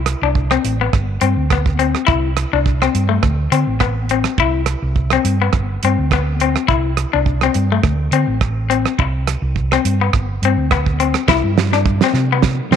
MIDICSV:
0, 0, Header, 1, 5, 480
1, 0, Start_track
1, 0, Key_signature, 0, "major"
1, 0, Tempo, 575264
1, 1736, Time_signature, 4, 2, 24, 8
1, 10648, End_track
2, 0, Start_track
2, 0, Title_t, "Clean electric guitar"
2, 0, Program_c, 0, 27
2, 194, Note_on_c, 0, 62, 61
2, 367, Note_off_c, 0, 62, 0
2, 427, Note_on_c, 0, 60, 72
2, 602, Note_off_c, 0, 60, 0
2, 677, Note_on_c, 0, 59, 68
2, 849, Note_off_c, 0, 59, 0
2, 1013, Note_on_c, 0, 60, 65
2, 1191, Note_off_c, 0, 60, 0
2, 1272, Note_on_c, 0, 59, 74
2, 1443, Note_off_c, 0, 59, 0
2, 1494, Note_on_c, 0, 60, 67
2, 1672, Note_off_c, 0, 60, 0
2, 1723, Note_on_c, 0, 64, 84
2, 1905, Note_off_c, 0, 64, 0
2, 2113, Note_on_c, 0, 62, 61
2, 2288, Note_off_c, 0, 62, 0
2, 2354, Note_on_c, 0, 60, 66
2, 2529, Note_off_c, 0, 60, 0
2, 2577, Note_on_c, 0, 57, 67
2, 2758, Note_off_c, 0, 57, 0
2, 2938, Note_on_c, 0, 60, 76
2, 3116, Note_off_c, 0, 60, 0
2, 3177, Note_on_c, 0, 59, 77
2, 3356, Note_off_c, 0, 59, 0
2, 3429, Note_on_c, 0, 60, 70
2, 3603, Note_off_c, 0, 60, 0
2, 3670, Note_on_c, 0, 64, 91
2, 3844, Note_off_c, 0, 64, 0
2, 4279, Note_on_c, 0, 60, 74
2, 4453, Note_off_c, 0, 60, 0
2, 4519, Note_on_c, 0, 59, 68
2, 4693, Note_off_c, 0, 59, 0
2, 4879, Note_on_c, 0, 60, 64
2, 5050, Note_off_c, 0, 60, 0
2, 5118, Note_on_c, 0, 59, 78
2, 5290, Note_off_c, 0, 59, 0
2, 5352, Note_on_c, 0, 60, 64
2, 5526, Note_off_c, 0, 60, 0
2, 5577, Note_on_c, 0, 64, 86
2, 5757, Note_off_c, 0, 64, 0
2, 5952, Note_on_c, 0, 62, 62
2, 6129, Note_off_c, 0, 62, 0
2, 6202, Note_on_c, 0, 60, 66
2, 6376, Note_off_c, 0, 60, 0
2, 6442, Note_on_c, 0, 57, 67
2, 6616, Note_off_c, 0, 57, 0
2, 6784, Note_on_c, 0, 60, 70
2, 6961, Note_off_c, 0, 60, 0
2, 7258, Note_on_c, 0, 60, 66
2, 7437, Note_off_c, 0, 60, 0
2, 8119, Note_on_c, 0, 60, 71
2, 8293, Note_off_c, 0, 60, 0
2, 8356, Note_on_c, 0, 59, 69
2, 8530, Note_off_c, 0, 59, 0
2, 8720, Note_on_c, 0, 60, 66
2, 8890, Note_off_c, 0, 60, 0
2, 8944, Note_on_c, 0, 59, 73
2, 9119, Note_off_c, 0, 59, 0
2, 9179, Note_on_c, 0, 60, 59
2, 9355, Note_off_c, 0, 60, 0
2, 9421, Note_on_c, 0, 64, 99
2, 9596, Note_off_c, 0, 64, 0
2, 9790, Note_on_c, 0, 62, 70
2, 9964, Note_off_c, 0, 62, 0
2, 10044, Note_on_c, 0, 60, 78
2, 10213, Note_off_c, 0, 60, 0
2, 10284, Note_on_c, 0, 59, 73
2, 10452, Note_off_c, 0, 59, 0
2, 10618, Note_on_c, 0, 60, 87
2, 10648, Note_off_c, 0, 60, 0
2, 10648, End_track
3, 0, Start_track
3, 0, Title_t, "Fingered electric bass"
3, 0, Program_c, 1, 33
3, 0, Note_on_c, 1, 36, 98
3, 107, Note_off_c, 1, 36, 0
3, 182, Note_on_c, 1, 36, 90
3, 463, Note_off_c, 1, 36, 0
3, 536, Note_on_c, 1, 33, 82
3, 727, Note_off_c, 1, 33, 0
3, 779, Note_on_c, 1, 31, 86
3, 969, Note_off_c, 1, 31, 0
3, 1015, Note_on_c, 1, 43, 80
3, 1117, Note_off_c, 1, 43, 0
3, 1136, Note_on_c, 1, 38, 71
3, 1612, Note_off_c, 1, 38, 0
3, 1736, Note_on_c, 1, 36, 101
3, 2030, Note_off_c, 1, 36, 0
3, 2110, Note_on_c, 1, 36, 84
3, 2389, Note_off_c, 1, 36, 0
3, 2457, Note_on_c, 1, 43, 87
3, 2649, Note_off_c, 1, 43, 0
3, 2692, Note_on_c, 1, 38, 81
3, 2886, Note_off_c, 1, 38, 0
3, 2933, Note_on_c, 1, 50, 81
3, 3038, Note_off_c, 1, 50, 0
3, 3062, Note_on_c, 1, 33, 74
3, 3537, Note_off_c, 1, 33, 0
3, 3652, Note_on_c, 1, 36, 100
3, 3949, Note_off_c, 1, 36, 0
3, 4024, Note_on_c, 1, 36, 87
3, 4307, Note_off_c, 1, 36, 0
3, 4376, Note_on_c, 1, 43, 79
3, 4570, Note_off_c, 1, 43, 0
3, 4611, Note_on_c, 1, 31, 87
3, 4807, Note_off_c, 1, 31, 0
3, 4868, Note_on_c, 1, 43, 77
3, 4968, Note_off_c, 1, 43, 0
3, 4991, Note_on_c, 1, 38, 76
3, 5463, Note_off_c, 1, 38, 0
3, 5574, Note_on_c, 1, 36, 102
3, 5872, Note_off_c, 1, 36, 0
3, 5958, Note_on_c, 1, 36, 88
3, 6236, Note_off_c, 1, 36, 0
3, 6299, Note_on_c, 1, 43, 78
3, 6493, Note_off_c, 1, 43, 0
3, 6539, Note_on_c, 1, 38, 85
3, 6733, Note_off_c, 1, 38, 0
3, 6770, Note_on_c, 1, 50, 73
3, 6877, Note_off_c, 1, 50, 0
3, 6903, Note_on_c, 1, 33, 76
3, 7379, Note_off_c, 1, 33, 0
3, 7500, Note_on_c, 1, 36, 88
3, 7795, Note_off_c, 1, 36, 0
3, 7859, Note_on_c, 1, 36, 85
3, 8144, Note_off_c, 1, 36, 0
3, 8217, Note_on_c, 1, 43, 87
3, 8410, Note_off_c, 1, 43, 0
3, 8457, Note_on_c, 1, 31, 84
3, 8650, Note_off_c, 1, 31, 0
3, 8695, Note_on_c, 1, 43, 78
3, 8799, Note_off_c, 1, 43, 0
3, 8815, Note_on_c, 1, 38, 70
3, 9291, Note_off_c, 1, 38, 0
3, 9415, Note_on_c, 1, 36, 108
3, 9518, Note_off_c, 1, 36, 0
3, 9539, Note_on_c, 1, 43, 83
3, 10012, Note_off_c, 1, 43, 0
3, 10125, Note_on_c, 1, 48, 102
3, 10510, Note_off_c, 1, 48, 0
3, 10606, Note_on_c, 1, 48, 80
3, 10648, Note_off_c, 1, 48, 0
3, 10648, End_track
4, 0, Start_track
4, 0, Title_t, "Muted clean electric guitar strokes"
4, 7507, Note_on_c, 9, 29, 84
4, 7591, Note_off_c, 9, 29, 0
4, 10648, End_track
5, 0, Start_track
5, 0, Title_t, "Drums"
5, 50, Note_on_c, 9, 37, 68
5, 50, Note_on_c, 9, 42, 49
5, 134, Note_off_c, 9, 37, 0
5, 134, Note_off_c, 9, 42, 0
5, 294, Note_on_c, 9, 36, 56
5, 378, Note_off_c, 9, 36, 0
5, 423, Note_on_c, 9, 37, 62
5, 507, Note_off_c, 9, 37, 0
5, 538, Note_on_c, 9, 42, 51
5, 622, Note_off_c, 9, 42, 0
5, 778, Note_on_c, 9, 36, 77
5, 778, Note_on_c, 9, 37, 57
5, 861, Note_off_c, 9, 36, 0
5, 861, Note_off_c, 9, 37, 0
5, 1009, Note_on_c, 9, 42, 48
5, 1092, Note_off_c, 9, 42, 0
5, 1255, Note_on_c, 9, 37, 68
5, 1256, Note_on_c, 9, 36, 61
5, 1338, Note_off_c, 9, 37, 0
5, 1340, Note_off_c, 9, 36, 0
5, 1383, Note_on_c, 9, 36, 65
5, 1467, Note_off_c, 9, 36, 0
5, 1496, Note_on_c, 9, 42, 40
5, 1580, Note_off_c, 9, 42, 0
5, 1624, Note_on_c, 9, 37, 55
5, 1707, Note_off_c, 9, 37, 0
5, 1736, Note_on_c, 9, 36, 85
5, 1820, Note_off_c, 9, 36, 0
5, 1974, Note_on_c, 9, 37, 62
5, 1974, Note_on_c, 9, 42, 44
5, 2058, Note_off_c, 9, 37, 0
5, 2058, Note_off_c, 9, 42, 0
5, 2217, Note_on_c, 9, 36, 61
5, 2301, Note_off_c, 9, 36, 0
5, 2351, Note_on_c, 9, 37, 59
5, 2435, Note_off_c, 9, 37, 0
5, 2460, Note_on_c, 9, 42, 47
5, 2543, Note_off_c, 9, 42, 0
5, 2693, Note_on_c, 9, 37, 63
5, 2695, Note_on_c, 9, 36, 72
5, 2776, Note_off_c, 9, 37, 0
5, 2779, Note_off_c, 9, 36, 0
5, 2938, Note_on_c, 9, 42, 47
5, 3021, Note_off_c, 9, 42, 0
5, 3172, Note_on_c, 9, 37, 64
5, 3175, Note_on_c, 9, 36, 69
5, 3255, Note_off_c, 9, 37, 0
5, 3259, Note_off_c, 9, 36, 0
5, 3416, Note_on_c, 9, 42, 45
5, 3499, Note_off_c, 9, 42, 0
5, 3539, Note_on_c, 9, 37, 68
5, 3622, Note_off_c, 9, 37, 0
5, 3655, Note_on_c, 9, 36, 88
5, 3738, Note_off_c, 9, 36, 0
5, 3889, Note_on_c, 9, 37, 67
5, 3889, Note_on_c, 9, 42, 52
5, 3972, Note_off_c, 9, 37, 0
5, 3972, Note_off_c, 9, 42, 0
5, 4136, Note_on_c, 9, 36, 54
5, 4220, Note_off_c, 9, 36, 0
5, 4259, Note_on_c, 9, 37, 67
5, 4343, Note_off_c, 9, 37, 0
5, 4380, Note_on_c, 9, 42, 52
5, 4463, Note_off_c, 9, 42, 0
5, 4612, Note_on_c, 9, 37, 58
5, 4616, Note_on_c, 9, 36, 77
5, 4695, Note_off_c, 9, 37, 0
5, 4700, Note_off_c, 9, 36, 0
5, 4862, Note_on_c, 9, 42, 53
5, 4945, Note_off_c, 9, 42, 0
5, 5098, Note_on_c, 9, 36, 68
5, 5104, Note_on_c, 9, 37, 69
5, 5182, Note_off_c, 9, 36, 0
5, 5187, Note_off_c, 9, 37, 0
5, 5342, Note_on_c, 9, 42, 44
5, 5425, Note_off_c, 9, 42, 0
5, 5471, Note_on_c, 9, 37, 60
5, 5555, Note_off_c, 9, 37, 0
5, 5579, Note_on_c, 9, 36, 86
5, 5662, Note_off_c, 9, 36, 0
5, 5817, Note_on_c, 9, 37, 62
5, 5817, Note_on_c, 9, 42, 44
5, 5900, Note_off_c, 9, 37, 0
5, 5900, Note_off_c, 9, 42, 0
5, 6058, Note_on_c, 9, 36, 56
5, 6142, Note_off_c, 9, 36, 0
5, 6185, Note_on_c, 9, 37, 65
5, 6268, Note_off_c, 9, 37, 0
5, 6294, Note_on_c, 9, 42, 48
5, 6378, Note_off_c, 9, 42, 0
5, 6537, Note_on_c, 9, 37, 64
5, 6538, Note_on_c, 9, 36, 83
5, 6621, Note_off_c, 9, 36, 0
5, 6621, Note_off_c, 9, 37, 0
5, 6776, Note_on_c, 9, 42, 50
5, 6860, Note_off_c, 9, 42, 0
5, 7018, Note_on_c, 9, 36, 71
5, 7018, Note_on_c, 9, 37, 68
5, 7101, Note_off_c, 9, 36, 0
5, 7101, Note_off_c, 9, 37, 0
5, 7265, Note_on_c, 9, 42, 45
5, 7349, Note_off_c, 9, 42, 0
5, 7389, Note_on_c, 9, 37, 62
5, 7472, Note_off_c, 9, 37, 0
5, 7500, Note_on_c, 9, 36, 86
5, 7583, Note_off_c, 9, 36, 0
5, 7739, Note_on_c, 9, 37, 67
5, 7739, Note_on_c, 9, 42, 50
5, 7822, Note_off_c, 9, 37, 0
5, 7822, Note_off_c, 9, 42, 0
5, 7976, Note_on_c, 9, 36, 53
5, 8059, Note_off_c, 9, 36, 0
5, 8109, Note_on_c, 9, 37, 66
5, 8193, Note_off_c, 9, 37, 0
5, 8220, Note_on_c, 9, 42, 53
5, 8304, Note_off_c, 9, 42, 0
5, 8455, Note_on_c, 9, 37, 59
5, 8457, Note_on_c, 9, 36, 73
5, 8538, Note_off_c, 9, 37, 0
5, 8540, Note_off_c, 9, 36, 0
5, 8701, Note_on_c, 9, 42, 47
5, 8785, Note_off_c, 9, 42, 0
5, 8936, Note_on_c, 9, 37, 73
5, 8937, Note_on_c, 9, 36, 69
5, 9019, Note_off_c, 9, 37, 0
5, 9021, Note_off_c, 9, 36, 0
5, 9065, Note_on_c, 9, 36, 67
5, 9148, Note_off_c, 9, 36, 0
5, 9178, Note_on_c, 9, 42, 43
5, 9261, Note_off_c, 9, 42, 0
5, 9296, Note_on_c, 9, 37, 65
5, 9380, Note_off_c, 9, 37, 0
5, 9414, Note_on_c, 9, 36, 97
5, 9415, Note_on_c, 9, 38, 73
5, 9498, Note_off_c, 9, 36, 0
5, 9499, Note_off_c, 9, 38, 0
5, 9659, Note_on_c, 9, 38, 72
5, 9742, Note_off_c, 9, 38, 0
5, 9783, Note_on_c, 9, 38, 26
5, 9866, Note_off_c, 9, 38, 0
5, 9892, Note_on_c, 9, 36, 83
5, 9976, Note_off_c, 9, 36, 0
5, 10020, Note_on_c, 9, 38, 75
5, 10103, Note_off_c, 9, 38, 0
5, 10128, Note_on_c, 9, 38, 30
5, 10212, Note_off_c, 9, 38, 0
5, 10367, Note_on_c, 9, 38, 75
5, 10371, Note_on_c, 9, 36, 94
5, 10451, Note_off_c, 9, 38, 0
5, 10454, Note_off_c, 9, 36, 0
5, 10615, Note_on_c, 9, 38, 82
5, 10648, Note_off_c, 9, 38, 0
5, 10648, End_track
0, 0, End_of_file